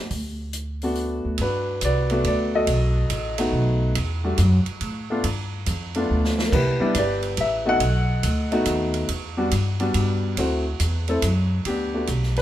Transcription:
0.10 D2, kick, open hi-hat
0.53 closed hi-hat
0.82 A3 B3 D4 F#4, open hi-hat
0.95 open hi-hat
1.25 D2
1.38 G2 B4, kick, ride
1.43 D4 F#4
1.81 C2 F#4 D5, kick, hi-hat pedal, ride
1.85 B4
2.10 A3 B3 D4 F#4, ride
2.24 D2 D5, kick, ride
2.55 F#4 A4 D#5
2.67 B1, kick, ride
3.10 A1, kick, hi-hat pedal, ride
3.38 A3 B3 D#4 F#4, ride
3.52 B1, kick
3.95 E2, kick, ride
4.24 G3 A3 D4 F#4
4.38 F#2, kick, hi-hat pedal, ride
4.66 muted upright bass stroke, ride
4.81 A2, kick, ride
5.10 A3 B3 D4 F4
5.24 G2, kick, ride
5.66 F2, kick, hi-hat pedal, ride
5.95 A3 B3 D4 F4, ride
6.10 D2
6.24 snare
6.39 snare
6.47 A#4
6.52 C2 E4 G4 B4, kick, crash
6.80 G3 B3 D4 E4, muted upright bass stroke
6.95 G1 G4 B4 D5, kick, hi-hat pedal, ride
7.22 ride
7.37 A1 E5, kick, ride
7.65 A3 B3 D#4 F#4 A4 D#5 F#5
7.80 B1, kick, ride
8.23 D2, kick, hi-hat pedal, ride
8.52 A3 B3 D#4 F#4, ride
8.66 D#2, kick, hi-hat pedal, ride
8.94 ride
9.09 E2, kick, ride
9.37 G3 B3 D4 F#4
9.51 G2, kick, hi-hat pedal, ride
9.80 G3 B3 D4 F#4, ride
9.94 G2, kick, ride
10.37 D2 A3 C4 E4 F#4, kick, ride
10.80 E2, kick, hi-hat pedal, ride
11.08 A3 C4 E4 A4, ride
11.22 F#2, kick, hi-hat pedal, ride
11.65 D2 B3 D4 G4, kick, ride
11.94 A3 B3 D4 F#4
12.07 B1, kick, hi-hat pedal, ride
12.23 snare
12.36 B4, snare, ride

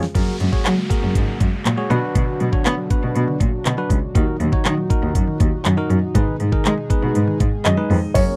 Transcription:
Already playing: C#3 F3 G#3 F4 G#4
0.03 snare
0.15 F#2 C#3 F#3 G#3 A#3 F#4 G#4 A#4, kick, closed hi-hat, downlifter
0.28 F#3
0.40 F#2 G#3, closed hi-hat
0.52 F#3 F#4 G#4 C#5, kick
0.65 F#3, clap, closed hi-hat
0.78 G#3
0.90 A#3 F#4 G#4 A#4, kick, closed hi-hat
1.03 F#2 C#4
1.15 G#2, kick, closed hi-hat
1.28 F#3
1.40 F#2 G#3, kick, closed hi-hat
1.65 A#2 F#3, clap, closed hi-hat
1.77 G#3 F#4 G#4 C#5
1.90 B2 D3 F#3 D4 F#4 B4, closed hi-hat
2.15 B2 D3, kick, closed hi-hat
2.28 D3
2.40 B2 F#3, closed hi-hat
2.52 D3 D4 F#4 C#5, kick
2.66 D3 B3, clap, closed hi-hat
2.78 F#3
2.90 B3 D4 F#4 B4, kick, closed hi-hat
3.03 B2 D4
3.15 B2, closed hi-hat
3.28 D3
3.40 A#2 F#3, kick, closed hi-hat
3.65 B2 D3, clap, closed hi-hat
3.78 F#3 D4 F#4 B4
3.90 C#2 F#3, kick, closed hi-hat
4.15 D#2 A#2 D#3 D#4 F#4 A#4, kick, closed hi-hat
4.27 D#3
4.40 D#2 F#3, closed hi-hat
4.52 D#3 D#4 F#4 C#5, kick
4.65 D#3, clap, closed hi-hat
4.77 F#3
4.90 A#3 D#4 F#4 A#4, kick, closed hi-hat
5.03 D#2 D#4
5.15 F#2, kick, closed hi-hat
5.28 D#3
5.40 D#2 F#3, kick, closed hi-hat
5.65 F#2 D#3, clap, closed hi-hat
5.77 F#3 D#4 F#4 A#4
5.90 F#2 F#3, closed hi-hat
6.15 G#2 B2 D#3 G#3 D#4 G#4 B4, kick, closed hi-hat
6.28 D#3
6.40 G#2 G#3, closed hi-hat
6.52 D#3 D#4 G#4 A#4, kick
6.65 D#3 G#3, clap, closed hi-hat
6.78 G#3
6.90 B3 D#4 G#4 B4, kick, closed hi-hat
7.02 B2 D#4
7.15 G#2, closed hi-hat
7.28 D#3
7.40 G#2 G#3, kick, closed hi-hat
7.64 F#2 D#3 D#5, clap, closed hi-hat
7.77 G#3 D#4 G#4 B4
7.90 F2 G#3, open hi-hat
8.14 F#2 C#3 F#3 G#3 A#3 C#4 F#4 G#4 A#4 C#5, kick, closed hi-hat, crash, tambourine

